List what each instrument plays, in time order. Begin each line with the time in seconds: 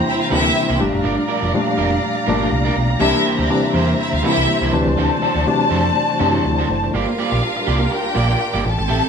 Already playing: reed electric piano C3 E3 G3 A#3 D4, string section E4 C5 G5 A#5
0.07 string section E4 E5
0.20 string section F4 F5, muted clean electric guitar stroke
0.30 fingered electric bass D2, reed electric piano C3 E3 G3 A#3 D4, clean electric guitar A#3 E4 G4 C5, string section E4 E5
0.45 muted clean electric guitar stroke
0.56 muted clean electric guitar stroke
0.68 fingered electric bass C2, clean electric guitar A#3 E4 G4 C5
0.79 fingered electric bass G1, reed electric piano A#2 F3 G3 A3 D4, string section G4 D5 F5 A#5, muted clean electric guitar stroke
0.93 fingered electric bass F#1, muted clean electric guitar stroke
1.03 fingered electric bass G1, clean electric guitar D4 F4 A#4 D5
1.17 muted clean electric guitar stroke
1.28 clean electric guitar D4 F4 A#4 D5
1.41 fingered electric bass F1, clean electric guitar D4 F4 A#4 D5
1.53 reed electric piano A#2 F3 G3 A3 D4, muted clean electric guitar stroke
1.67 muted clean electric guitar stroke
1.78 fingered electric bass F1, clean electric guitar D4 F4 A#4 D5
1.92 muted clean electric guitar stroke
2.02 muted clean electric guitar stroke
2.15 muted clean electric guitar stroke
2.26 fingered electric bass G1, reed electric piano A#2 F3 G3 A3 D4, clean electric guitar D4 F4 A#4 D5
2.40 clean electric guitar D4 F4 A#4 D5
2.51 fingered electric bass C2, muted clean electric guitar stroke
2.65 clean electric guitar D4 F4 A#4 D5
2.76 fingered electric bass B1, muted clean electric guitar stroke
2.90 muted clean electric guitar stroke
3.00 fingered electric bass C2, reed electric piano C3 E3 G3 A#3 D4, clean electric guitar A#3 E4 G4 C5, string section E4 C5 E5
3.14 muted clean electric guitar stroke
3.25 clean electric guitar A#3 E4 G4 C5
3.39 fingered electric bass D2, clean electric guitar A#3 E4 G4 C5, string section D4 D5
3.49 reed electric piano C3 E3 G3 A#3 D4, muted clean electric guitar stroke
3.64 muted clean electric guitar stroke
3.74 fingered electric bass E2, clean electric guitar A#3 E4 G4 C5, string section C4 C5
3.89 muted clean electric guitar stroke
3.98 string section E4 E5, muted clean electric guitar stroke
4.12 fingered electric bass D2, string section F4 F5, muted clean electric guitar stroke
4.23 reed electric piano C3 E3 G3 A#3 E4, clean electric guitar A#3 E4 G4 C5, string section E4 E5
4.37 fingered electric bass C2, clean electric guitar A#3 E4 G4 C5
4.48 muted clean electric guitar stroke
4.61 fingered electric bass C2, clean electric guitar A#3 E4 G4 C5
4.72 fingered electric bass D2, reed electric piano C3 E3 F#3 A3 D4, string section F#4 D5 A5, muted clean electric guitar stroke
4.86 fingered electric bass C#2, muted clean electric guitar stroke
4.97 fingered electric bass D2, clean electric guitar A3 D4 F#4 C5
5.11 muted clean electric guitar stroke
5.22 clean electric guitar A3 D4 F#4 C5
5.35 fingered electric bass D2, clean electric guitar A3 D4 F#4 C5
5.46 reed electric piano C3 E3 F#3 A3 D4, muted clean electric guitar stroke
5.60 muted clean electric guitar stroke
5.70 fingered electric bass F2, clean electric guitar A3 D4 F#4 C5
5.85 muted clean electric guitar stroke
5.95 muted clean electric guitar stroke
6.09 muted clean electric guitar stroke
6.19 fingered electric bass F#2, reed electric piano C3 E3 F#3 A3 D4, clean electric guitar A3 D4 F#4 C5
6.27 reed electric piano E4
6.34 clean electric guitar A3 D4 F#4 C5
6.45 fingered electric bass D2, reed electric piano F#4 A4, muted clean electric guitar stroke
6.58 clean electric guitar A3 D4 F#4 C5
6.69 fingered electric bass F#1, reed electric piano A4 C5, muted clean electric guitar stroke
6.84 muted clean electric guitar stroke
6.93 fingered electric bass G1, string section G3 D4 F4 A#4 F5, clean electric guitar A#3 F4 G4 D5
7.08 muted clean electric guitar stroke
7.18 clean electric guitar A#3 F4 G4 D5
7.32 fingered electric bass A#1, clean electric guitar A#3 F4 G4 D5
7.42 muted clean electric guitar stroke
7.56 muted clean electric guitar stroke
7.67 fingered electric bass C2, clean electric guitar A#3 F4 G4 D5
7.80 muted clean electric guitar stroke
7.91 string section G4 G5, muted clean electric guitar stroke
8.04 muted clean electric guitar stroke
8.15 fingered electric bass A#1, clean electric guitar A#3 F4 G4 D5
8.28 clean electric guitar A#3 F4 G4 D5
8.40 muted clean electric guitar stroke
8.54 fingered electric bass G1, clean electric guitar A#3 F4 G4 D5
8.64 fingered electric bass A1, string section A3 C4 G4 A4 A5, muted clean electric guitar stroke
8.78 fingered electric bass G#1, muted clean electric guitar stroke
8.88 fingered electric bass A1, clean electric guitar C4 G4 A4 E5
9.02 muted clean electric guitar stroke